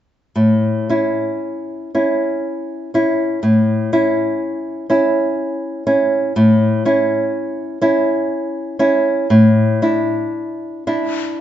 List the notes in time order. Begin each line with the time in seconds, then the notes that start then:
0.36 A2
0.89 C#4 E4
1.95 C#4 E4
2.94 C#4 E4
3.43 A2
3.93 C#4 E4
4.90 C#4 E4
5.87 C#4 E4
6.36 A2
6.85 C#4 E4
7.82 C#4 E4
8.79 C#4 E4
9.30 A2
9.82 D4 E4
10.87 D4 E4